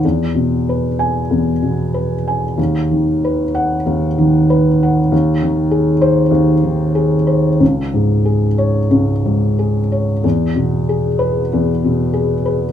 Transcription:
<<
  \new Staff \with { instrumentName = "Felt piano" } { \time 4/4 \key e \major \tempo 4 = 94 r4. gis''4 r4. | r4. fis''4 r4. | r4. bis'4 r4. | r4. cis''4 r4. |
r4. b'4 r4. | }
  \new Staff \with { instrumentName = "Felt piano" } { \clef bass \time 4/4 \key e \major e,8 b,8 b'4 e,8 b,8 b'8 gis''8 | dis,8 dis8 b'4 dis,8 dis8 b'8 fis''8 | dis,8 dis8 gis'4 dis,8 dis8 gis'8 bis'8 | cis,8 gis,8 gis'4 cis,8 gis,8 gis'8 cis''8 |
e,8 b,8 gis'4 e,8 b,8 gis'8 b'8 | }
>>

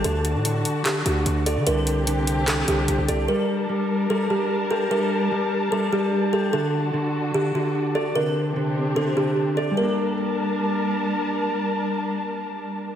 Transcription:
<<
  \new Staff \with { instrumentName = "Kalimba" } { \time 4/4 \key g \minor \tempo 4 = 148 a'2 g'8 fis'4 a'8 | bes'2 a'8 g'4 a'8 | bes'2 a'8 g'4 a'8 | bes'2 a'8 g'4 a'8 |
a'2 g'8 fis'4 a'8 | bes'2 a'8 g'4 a'8 | bes'2. r4 | r1 | }
  \new Staff \with { instrumentName = "String section" } { \time 4/4 \key g \minor <d d' fis' a''>1 | <c c' d' g'>1 | <g bes' a''>1~ | <g bes' a''>1 |
<d fis'>1 | <c c' d' g'>1 | <g d' bes' a''>1~ | <g d' bes' a''>1 | }
  \new Staff \with { instrumentName = "Clean electric guitar" } { \clef bass \time 4/4 \key g \minor d4 d4 d8 d4 d''8 | d4 d4 d8 d4 d''8 | g4 g4 g8 g4 g'8 | g4 g4 g8 g4 g'8 |
d4 d4 d8 d4 d''8 | d4 d4 d8 d4 d''8 | <g bes d'>1~ | <g bes d'>1 | }
  \new Staff \with { instrumentName = "808-style bass" } { \clef bass \time 4/4 \key g \minor d,8. a,8. r4 d,8 d,8. d16 | c,2~ c,8 c,8 c,16 c,16 c,8 | r1 | r1 |
r1 | r1 | r1 | r1 | }
  \new DrumStaff \with { instrumentName = "Drums" } \drummode { \time 4/4 hh8 hh8 hh8 hh8 <hc hh>8 hh8 hh8 hh8 | hh8 hh8 hh8 hh8 <hc hh>8 hh8 hh8 hh8 | r4 r4 r4 r4 | r4 r4 r4 r4 |
r4 r4 r4 r4 | r4 r4 r4 r4 | r4 r4 r4 r4 | r4 r4 r4 r4 | }
>>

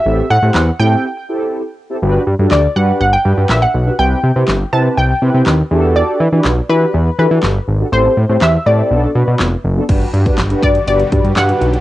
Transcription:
<<
  \new Staff \with { instrumentName = "Synth pluck" } { \time 4/4 \key g \major \tempo 4 = 122 e''8 fis''4 g''2 r8 | r4 d''8 fis''8 fis''16 g''8. e''16 fis''8. | g''4. a''8 g''4 r4 | d''4. b'4 b'4. |
c''4 e''8 d''2 r8 | r4. d''8 d''4 fis''4 | }
  \new Staff \with { instrumentName = "Analog polysynth" } { \time 4/4 \key g \major <c' e' g' a'>8 r16 <c' e' g' c''>8 r16 <c' e' g' a'>8 r8 <c' e' g' a'>8. r8 <c' e' g' a'>16 | <d' fis' g' b'>8 r16 <d' fis' g' a'>8 r16 <d' fis' g' b'>8 r8 <d' fis' g' b'>8. r8 <d' fis' g' b'>16 | <c' e' g' b'>8 r16 <c' e' g' b'>8 r16 <c' e' g' b'>8 r8 <c' e' g' b'>8. r16 <d' fis' g' a'>8~ | <d' fis' g' a'>8 r16 <d' fis' g' b'>8 r16 <d' fis' g' b'>8 r8 <d' fis' g' a'>8. r8 <d' fis' g' a'>16 |
<c' e' g' a'>8 r16 <c' e' g' c''>8 r16 <c' e' g' a'>8 <b d' fis' a'>8 <b d' fis' b'>8. r8 <b d' fis' a'>16 | <d' fis' g' b'>8 r16 <d' fis' g' b'>16 r16 <d' fis' g' b'>8 r16 <d' fis' g' b'>16 r16 <d' fis' g' b'>8 r16 <d' fis' g' b'>8 r16 | }
  \new Staff \with { instrumentName = "Supersaw synth" } { \clef bass \time 4/4 \key g \major r1 | r1 | r1 | r1 |
r1 | <b, d g fis' g'>1 | }
  \new Staff \with { instrumentName = "Analog synth bass" } { \clef bass \time 4/4 \key g \major a,,8 a,16 a,16 e,8 a,8 r2 | g,,8 g,16 g,16 d,8 g,8 g,,8 g,16 g,16 ais,,8 b,,8 | c,8 c16 c16 g,,8 c8 c,8 c16 c16 dis,8 e,8~ | e,8 e16 e16 b,,8 e8 e,8 e16 e16 g,,8 gis,,8 |
a,,8 a,16 a,16 e,8 a,8 b,,8 b,16 b,16 f,,8 fis,,8 | g,,8 g,8 g,,8 g,8 g,,8 g,16 g,16 g,8 b,,8 | }
  \new DrumStaff \with { instrumentName = "Drums" } \drummode { \time 4/4 r4 <hc sn>4 r4 r4 | r4 <hc sn>4 r4 <hc sn>4 | r4 <hc sn>4 r4 <hc sn>4 | r4 <hc sn>4 r4 <hc sn>4 |
r4 <hc sn>4 r4 <hc sn>4 | <cymc hh bd>16 hh16 hh16 <hh bd>16 <hc hh sn>16 hh16 <hh bd>16 hh16 hh16 hh16 <hh bd>16 hh16 <hc hh sn>16 hh16 hh16 hh16 | }
>>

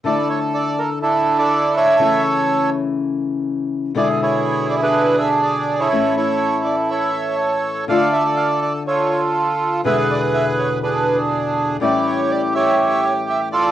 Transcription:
<<
  \new Staff \with { instrumentName = "Bandoneon" } { \time 4/4 \key d \minor \tempo 4 = 122 << { d''8 cis''8 d''8 bes'8 a'8. d''8. e''8~ | e''8 r2. r8 | d''8 cis''4 d''16 b'8. e''8 d''8. cis''16~ | cis''8 cis''4 d''8 e''4 r4 |
f''8 e''8 f''8 d''8 cis''8. r4 r16 | e''8 d''8 e''8 cis''8 b'8. r4 r16 | d''8 cis''8 d''8 e''4 cis''8 e''8 d''8 | } \\ { a'2 <d' e'>8. a'8. <a' cis''>8~ | <a' cis''>4. r2 r8 | gis'8 <e' gis'>4~ <e' gis'>16 <d' gis'>4~ <d' gis'>16 gis'8. <e' a'>16~ | <e' a'>8 <e' a'>4. <a' cis''>2 |
<a' d''>2 <f' a'>2 | <gis' b'>2 <d' gis'>2 | g'4. <g' cis''>2 <f' a'>8 | } >> }
  \new Staff \with { instrumentName = "Nylon-string guitar" } { \time 4/4 \key d \minor <d a d' e'>1 | <cis e a cis' e'>1 | <b, d gis b e'>1 | <a, e a cis' e'>1 |
<d a d' f'>1 | <e, b, d gis b e'>1 | <a, e g cis' e'>1 | }
>>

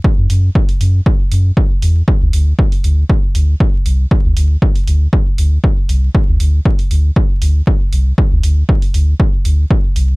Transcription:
<<
  \new Staff \with { instrumentName = "Sub bass" } { \clef bass \time 4/4 \key d \lydian \tempo 4 = 118 r16 fis,16 fis,8 r8 fis,8 r8 fis,8 r8 e,8 | r16 d,16 d,8 r8 d,8 r8 d,8 r8 c,8 | r16 d,16 d,8 r8 d,8 r8 d,8 r8 c,8 | r16 d,16 d,8 r8 d,8 r8 d,8 r8 c,8 |
r16 d,16 d,8 r8 d,8 r8 d,8 r8 c,8 | }
  \new DrumStaff \with { instrumentName = "Drums" } \drummode { \time 4/4 bd8 hho8 bd16 hho16 hho8 bd8 hho8 bd8 hho8 | bd8 hho8 bd16 hho16 hho8 bd8 hho8 bd8 hho8 | bd8 hho8 bd16 hho16 hho8 bd8 hho8 bd8 hho8 | bd8 hho8 bd16 hho16 hho8 bd8 hho8 bd8 hho8 |
bd8 hho8 bd16 hho16 hho8 bd8 hho8 bd8 hho8 | }
>>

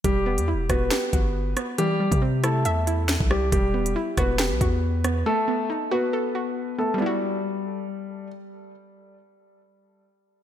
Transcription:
<<
  \new Staff \with { instrumentName = "Synth pluck" } { \time 4/4 \key e \minor \tempo 4 = 138 g8 b8 e'8 fis'8 g'8 fis'4 b8 | e8 g8 c'8 e'8 e''8 e'4 g8 | g8 b8 e'8 fis'8 g'8 fis'4 b8 | a8 b8 dis'8 fis'8 a'8 fis'4 b8 |
<g b e' fis'>1~ | <g b e' fis'>1 | }
  \new Staff \with { instrumentName = "Grand piano" } { \time 4/4 \key e \minor <g g'>4 r8 <b b'>2~ <b b'>8 | <g g'>4 r8 <a a'>2 <g g'>8 | <g g'>4 r8 <b b'>2~ <b b'>8 | <a a'>4 r8 <b b'>2 <a a'>8 |
g2. r4 | r1 | }
  \new Staff \with { instrumentName = "808-style bass" } { \clef bass \time 4/4 \key e \minor e,,8. e,16. e,,16. e,,8 r8 g,,4 r8 | r8. c4~ c16 e,4~ e,16 c,8. | e,,8 dis,,16 e,,16 r8 e,,8. b,,16 e,4. | r1 |
r1 | r1 | }
  \new DrumStaff \with { instrumentName = "Drums" } \drummode { \time 4/4 <hh bd>8. hh16 r8 <hh bd ss>8 <hh sn>8 <hh bd>8 r8 <hh ss>8 | hh8. <hh bd>16 r8 <hh ss>8 hh8 hh8 <hh sn>16 bd16 ss8 | <hh bd>8. hh16 r8 <hh bd ss>8 <hh sn>8 <hh bd>8 r8 <hh ss>8 | r4 r4 r4 r4 |
r4 r4 r4 r4 | r4 r4 r4 r4 | }
>>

